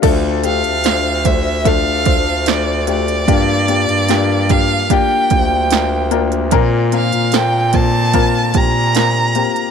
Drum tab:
CC |x---------------|----------------|----------------|
HH |x-xxx-x-x-x-x-xx|x-xxx-x-x-x-x-xx|x-xxx-x-x-x-x-xx|
SD |----o-------o---|----o-------o---|----o-------o---|
BD |o-----o-o-o-----|o-----o-o-o-----|o-----o-o-o-----|